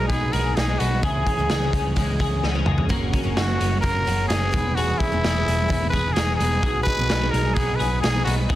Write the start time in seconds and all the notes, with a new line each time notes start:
Already playing: F#3 G#3 D#4 G#4
0.08 B1 B2 F#3 G#3 B3 D#4 G#4, kick, closed hi-hat
0.33 B1 B2 F#3 G#3 D#4 G#4 A#4, closed hi-hat
0.55 B1 D#4 G#4, snare, closed hi-hat
0.68 F#3 G#3 D#4
0.79 B1 B3 F#4, closed hi-hat
1.03 C#2 C#3 E3 G#3 C#4 G#4, kick, closed hi-hat
1.27 C#4, kick, closed hi-hat
1.38 C#2 C#3 E3 G#3 C#4
1.50 C#2 G#4, snare, closed hi-hat
1.61 E3 G#3 C#4
1.73 C#2 C#4, kick, closed hi-hat
1.96 C#2 C#3 E3 G#3 C#4, kick, closed hi-hat
2.19 C#2 C#3 E3 G#3 C#4 G#4, kick, closed hi-hat
2.43 C#2 B3, snare
2.54 E3 G#3 C#4
2.66 C#2 G#3, mid tom
2.78 floor tom
2.89 F#1 C#3 F#3 A#3 C#4 F#4, kick, closed hi-hat
3.13 C#4, kick, closed hi-hat
3.23 F#1 F#2 C#3 F#3 A#3 C#4
3.37 F#1 F#4, snare, closed hi-hat
3.47 F#3 A#3 C#4
3.60 F#1 C#4, closed hi-hat
3.81 F#1 C#3 F#3 A#3 C#4 A#4, kick, closed hi-hat
4.05 F#1 C#3 F#3 A#3 C#4 F#4, closed hi-hat
4.28 F#1 C#4 G#4, snare, closed hi-hat
4.41 F#3 A#3 C#4
4.51 E1 E3 G#3 B3 D#4, kick, closed hi-hat
4.75 B3 F#4 G#4, closed hi-hat
4.98 E4, kick, closed hi-hat
5.12 E1 E3 G#3 B3 D#4
5.23 E1 G#4, snare, closed hi-hat
5.35 G#3 B3
5.47 E1, closed hi-hat
5.68 E1 E3 G#3 B3 D#4, kick, closed hi-hat
5.89 E3 G#3 B4
5.93 E1 B3 D#4 G#4, kick, closed hi-hat
6.13 E1 G#4, snare, closed hi-hat
6.17 D#4
6.27 G#3 B3 D#4
6.36 G#4
6.40 E1 B3, closed hi-hat
6.62 B1 F#3 B3 D#4 G#4, kick, closed hi-hat
6.83 D#4 B4, kick, closed hi-hat
6.99 B1 B2 D#3 F#3 B3 D#4 G#4
7.10 B1 F#4, snare, closed hi-hat
7.21 F#3 B3 D#4 G#4
7.31 B1 D#4 A#4, closed hi-hat
7.54 B1 F#3 B3 D#4 G#4, kick, closed hi-hat
7.76 F#3 G#4 B4
7.80 B1 B3 D#4 G#4, closed hi-hat
8.01 B1 D#4 G#4, snare, closed hi-hat
8.15 F#3 B3 D#4 G#4
8.24 B1 B3 F#4, closed hi-hat
8.47 C#2 C#3 E3 G#3 C#4 E4 G#4, kick, closed hi-hat
8.52 E4